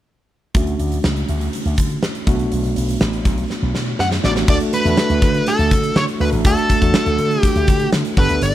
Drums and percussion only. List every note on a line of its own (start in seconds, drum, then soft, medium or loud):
0.55 kick medium
0.55 closed hi-hat medium
0.67 closed hi-hat soft
0.80 closed hi-hat medium
0.92 closed hi-hat soft
1.04 snare loud
1.17 closed hi-hat soft
1.29 closed hi-hat medium
1.41 closed hi-hat soft
1.53 closed hi-hat medium
1.66 closed hi-hat soft
1.78 kick medium
1.78 closed hi-hat medium
1.90 closed hi-hat soft
2.03 snare medium
2.15 closed hi-hat soft
2.27 kick medium
2.27 closed hi-hat medium
2.39 closed hi-hat soft
2.52 closed hi-hat medium
2.64 closed hi-hat soft
2.76 closed hi-hat medium
2.89 closed hi-hat medium
3.01 snare loud
3.13 closed hi-hat soft
3.25 kick medium
3.25 closed hi-hat medium
3.38 closed hi-hat soft
3.50 snare soft
3.75 snare medium
3.99 snare medium
4.11 snare medium
4.24 snare medium
4.36 snare medium
4.48 kick loud
4.48 crash medium
4.60 closed hi-hat medium
4.73 closed hi-hat medium
4.85 closed hi-hat medium
4.97 snare loud
5.10 closed hi-hat soft
5.22 kick medium
5.22 closed hi-hat medium
5.34 closed hi-hat soft
5.47 closed hi-hat medium
5.59 closed hi-hat soft
5.71 kick medium
5.71 closed hi-hat medium
5.83 closed hi-hat soft
5.96 snare loud
6.08 closed hi-hat medium
6.21 open hi-hat medium
6.33 closed hi-hat medium
6.45 kick loud
6.45 closed hi-hat medium
6.57 closed hi-hat medium
6.69 kick medium
6.69 closed hi-hat medium
6.82 kick medium
6.82 closed hi-hat medium
6.94 snare loud
7.06 closed hi-hat medium
7.18 closed hi-hat medium
7.31 closed hi-hat soft
7.43 kick medium
7.43 closed hi-hat medium
7.55 closed hi-hat medium
7.67 kick medium
7.67 closed hi-hat medium
7.80 closed hi-hat soft
7.93 snare loud
8.05 closed hi-hat medium
8.17 kick loud
8.17 open hi-hat medium
8.29 closed hi-hat medium
8.42 closed hi-hat medium